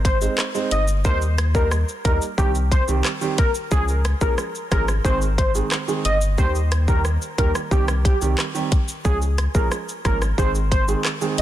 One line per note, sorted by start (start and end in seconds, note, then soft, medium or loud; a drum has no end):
0.00 0.28 G#1 loud
0.05 0.18 C5 medium
0.05 kick medium
0.05 closed hi-hat medium
0.05 shaker medium
0.21 0.38 G#3 medium
0.21 0.38 C4 medium
0.21 0.38 D#4 medium
0.21 0.38 C5 medium
0.21 shaker medium
0.38 cross-stick medium
0.38 clap medium
0.38 shaker medium
0.54 0.71 G#3 medium
0.54 0.71 C4 medium
0.54 0.71 D#4 medium
0.54 0.71 C5 medium
0.54 shaker medium
0.71 1.06 G1 medium
0.71 0.85 D#5 medium
0.71 closed hi-hat medium
0.71 shaker medium
0.88 shaker medium
1.05 1.84 D#2 loud
1.05 1.21 G3 medium
1.05 1.21 A#3 medium
1.05 1.21 D#4 medium
1.05 1.22 A#4 loud
1.05 1.18 C5 loud
1.05 kick loud
1.05 shaker medium
1.22 shaker medium
1.38 cross-stick loud
1.38 closed hi-hat medium
1.38 shaker medium
1.55 1.71 G3 medium
1.55 1.71 A#3 medium
1.55 1.71 D#4 medium
1.55 1.68 A#4 medium
1.55 1.72 A#4 medium
1.55 kick loud
1.55 shaker medium
1.71 cross-stick medium
1.71 shaker medium
1.89 shaker medium
2.04 2.19 D#2 loud
2.04 2.21 G3 medium
2.04 2.21 A#3 medium
2.04 2.21 D#4 medium
2.04 2.18 A#4 medium
2.04 2.22 A#4 medium
2.04 kick loud
2.04 closed hi-hat medium
2.04 shaker soft
2.22 shaker medium
2.38 2.81 C2 loud
2.38 2.54 D#3 medium
2.38 2.55 G3 medium
2.38 2.55 C4 medium
2.38 2.51 G4 medium
2.38 2.55 G4 loud
2.38 kick medium
2.38 shaker medium
2.55 shaker medium
2.72 2.85 C5 medium
2.72 kick loud
2.72 closed hi-hat medium
2.72 shaker medium
2.88 3.03 C2 loud
2.88 3.04 D#3 medium
2.88 3.05 G3 medium
2.88 3.05 C4 medium
2.88 3.05 G4 medium
2.88 shaker medium
3.05 cross-stick medium
3.05 clap medium
3.05 shaker medium
3.21 3.38 D#3 medium
3.21 3.38 G3 medium
3.21 3.38 C4 medium
3.21 3.38 G4 medium
3.21 shaker medium
3.38 3.51 A#4 medium
3.38 kick loud
3.38 closed hi-hat medium
3.38 shaker medium
3.55 shaker medium
3.71 4.14 C#2 loud
3.71 3.88 F3 medium
3.71 3.88 G#3 medium
3.71 3.88 C#4 medium
3.71 3.85 G#4 loud
3.71 3.88 G#4 loud
3.71 kick loud
3.71 shaker medium
3.88 shaker medium
4.05 cross-stick loud
4.05 closed hi-hat medium
4.05 shaker medium
4.21 4.36 A#1 medium
4.21 4.38 F3 medium
4.21 4.38 G#3 medium
4.21 4.38 C#4 medium
4.21 4.38 G#4 medium
4.21 4.35 A#4 medium
4.21 kick loud
4.21 shaker medium
4.38 cross-stick medium
4.38 shaker medium
4.55 shaker medium
4.71 5.00 G#1 medium
4.71 4.88 F3 medium
4.71 4.88 G#3 medium
4.71 4.88 C#4 medium
4.71 4.88 G#4 medium
4.71 4.85 A#4 medium
4.71 kick loud
4.71 cross-stick loud
4.71 closed hi-hat medium
4.71 shaker soft
4.88 cross-stick medium
4.88 shaker medium
5.05 5.62 G#1 loud
5.05 5.21 D#3 loud
5.05 5.21 G#3 medium
5.05 5.21 C4 medium
5.05 5.21 G#4 loud
5.05 5.18 C5 medium
5.05 kick loud
5.05 shaker medium
5.21 shaker medium
5.38 5.51 C5 medium
5.38 kick loud
5.38 closed hi-hat medium
5.38 shaker medium
5.55 5.71 D#3 medium
5.55 5.71 G#3 medium
5.55 5.71 C4 medium
5.55 5.72 G#4 medium
5.55 shaker medium
5.72 cross-stick medium
5.72 clap medium
5.72 shaker medium
5.88 6.04 D#3 medium
5.88 6.05 G#3 medium
5.88 6.05 C4 medium
5.88 6.05 G#4 medium
5.88 shaker medium
6.05 6.40 G1 medium
6.05 6.18 D#5 medium
6.05 closed hi-hat medium
6.05 shaker medium
6.21 shaker medium
6.38 7.18 D#2 loud
6.38 6.54 D#3 medium
6.38 6.55 G3 medium
6.38 6.55 A#3 medium
6.38 6.55 G4 loud
6.38 6.51 C5 loud
6.38 kick loud
6.38 shaker medium
6.55 shaker medium
6.72 cross-stick medium
6.72 closed hi-hat medium
6.72 shaker medium
6.88 7.05 D#3 medium
6.88 7.05 G3 medium
6.88 7.05 A#3 medium
6.88 7.05 G4 medium
6.88 7.01 A#4 medium
6.88 kick loud
6.88 shaker medium
7.05 cross-stick medium
7.05 shaker medium
7.22 shaker medium
7.38 7.53 D#2 loud
7.38 7.55 D#3 medium
7.38 7.55 G3 medium
7.38 7.55 A#3 medium
7.38 7.55 G4 medium
7.38 7.51 A#4 medium
7.38 kick medium
7.38 closed hi-hat medium
7.38 shaker soft
7.55 cross-stick medium
7.55 shaker medium
7.71 8.14 C2 loud
7.71 7.88 D#3 loud
7.71 7.88 G3 medium
7.71 7.88 C4 medium
7.71 7.85 G4 medium
7.71 7.88 G4 loud
7.71 kick loud
7.71 shaker medium
7.88 cross-stick loud
7.88 shaker medium
8.05 8.18 G4 medium
8.05 kick loud
8.05 closed hi-hat medium
8.05 shaker medium
8.21 8.36 C2 medium
8.21 8.38 D#3 medium
8.21 8.38 G3 medium
8.21 8.38 C4 medium
8.21 8.38 G4 medium
8.21 shaker medium
8.38 cross-stick medium
8.38 clap medium
8.38 shaker medium
8.54 8.71 D#3 medium
8.54 8.71 G3 medium
8.54 8.71 C4 medium
8.54 8.71 G4 medium
8.54 shaker medium
8.72 kick loud
8.72 closed hi-hat medium
8.72 shaker medium
8.88 shaker medium
9.04 9.48 C#2 loud
9.04 9.21 F3 medium
9.04 9.21 G#3 medium
9.04 9.21 C#4 medium
9.04 9.21 G#4 loud
9.04 9.18 G#4 loud
9.04 kick loud
9.04 shaker medium
9.22 shaker medium
9.38 cross-stick medium
9.38 closed hi-hat medium
9.38 shaker medium
9.55 9.69 A#1 medium
9.55 9.71 F3 medium
9.55 9.71 G#3 medium
9.55 9.71 C#4 medium
9.55 9.72 G#4 medium
9.55 9.68 A#4 medium
9.55 kick loud
9.55 shaker medium
9.72 cross-stick medium
9.72 shaker medium
9.89 shaker medium
10.04 10.33 G#1 medium
10.04 10.21 F3 medium
10.04 10.21 G#3 medium
10.04 10.21 C#4 medium
10.04 10.22 G#4 medium
10.04 10.18 A#4 medium
10.04 kick medium
10.04 cross-stick medium
10.04 closed hi-hat medium
10.04 shaker soft
10.22 cross-stick medium
10.22 shaker medium
10.38 10.95 G#1 loud
10.38 10.55 D#3 loud
10.38 10.55 G#3 medium
10.38 10.55 C4 medium
10.38 10.55 G#4 loud
10.38 10.51 C5 medium
10.38 kick medium
10.38 shaker medium
10.55 shaker medium
10.72 10.85 C5 medium
10.72 kick loud
10.72 closed hi-hat medium
10.72 shaker medium
10.88 11.04 D#3 medium
10.88 11.05 G#3 medium
10.88 11.05 C4 medium
10.88 11.05 G#4 medium
10.88 shaker medium
11.05 cross-stick medium
11.05 clap medium
11.05 shaker medium
11.21 11.38 D#3 medium
11.21 11.38 G#3 medium
11.21 11.38 C4 medium
11.21 11.38 G#4 medium
11.21 shaker medium
11.38 11.42 G1 medium
11.38 11.42 D#5 medium
11.38 closed hi-hat medium
11.38 shaker medium